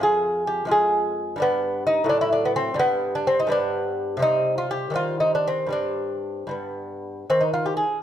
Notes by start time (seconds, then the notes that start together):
Already playing: F2
0.00 G#3 F4 G#4
0.47 G4
0.65 F2 G#3 F4
0.71 G#4
1.36 G2 G3 D4
1.42 B3
1.87 D#4
2.04 A2 F#3
2.09 D4
2.21 E4
2.33 D4
2.45 B3
2.56 C4
2.74 G2 G3
2.79 B3
3.15 D4
3.27 C4
3.40 D#4
3.47 G2 G3 B3
3.52 D4
4.17 C3 G3 C4
4.22 D#4
4.58 F4
4.71 G4
4.90 D#3 G3 C4
4.96 F4
5.20 D#4
5.35 D4
5.48 C4
5.67 G2 G3 C4
5.72 D4
6.47 G2 G3
6.51 B3
7.30 D#3 C4
7.41 D#4
7.54 F4
7.66 G4
7.77 G#4